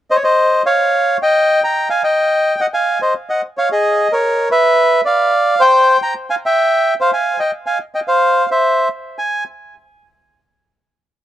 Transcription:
0.10 C5 D#5
0.16 C#5
0.24 C5 D#5
0.66 C#5 F5
1.23 D#5 G5
1.64 G5 A#5
1.90 F5 G#5
2.04 D#5 G5
2.61 D#5 F#5
2.74 F5 G#5
3.02 C5 D#5
3.29 D#5 F#5
3.57 C#5 F5
3.72 G#4 D#5
4.12 A#4 C#5
4.51 B4 E5
5.05 D5 F5
5.60 C5 G5
6.02 G5 A#5
6.30 F5 G#5
6.46 E5 G5
7.01 C5 F5
7.13 F5 G#5
7.40 D#5 G5
7.66 F5 G#5
7.95 D#5 G5
8.07 C5 F5
8.51 C5 E5
9.18 G#5

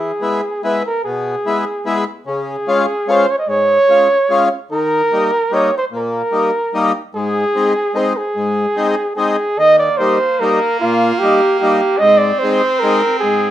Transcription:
Already playing: E3 G#4
0.21 G#3 B3 E4
0.63 G#3 B3 E4 B4
0.86 A#4
1.05 B2 G#4
1.46 G#3 B3 E4
1.85 G#3 B3 E4
2.26 C#3 G#4
2.68 G#3 C#4 F4
3.07 G#3 C#4 F4 C5
3.31 C#5
3.38 D#5
3.48 G#2 C#5
3.88 G#3 C#4 F4
4.30 G#3 C#4 F4
4.71 D#3 A#4
5.12 G3 A#3 D#4
5.51 G3 A#3 D#4 C#5
5.78 C5
5.92 A#2
5.97 A#4
6.32 G3 A#3 D#4
6.74 G3 A#3 D#4
7.15 G#2 G#4
7.55 G#3 C4 D#4
7.94 G#3 C4 D#4 C5
8.17 G#4
8.36 G#2
8.76 G#3 C4 D#4
9.16 G#3 C4 D#4 G#4
9.58 D#3 A#3 D#5
9.79 D5
9.97 G3 A#3 D#4 C5
10.40 G3 A#3 D#4 A#4
10.80 A#2 F4
11.19 G3 A#3 G4
11.24 D#4
11.60 G3 A#3 D#4 G4
11.97 G#2 D4 D#5
12.02 C4
12.18 D5
12.39 C5
12.43 G#3 C4 D#4
12.80 G#3 C4 A#4
12.84 D#4
13.20 G#2 G#4

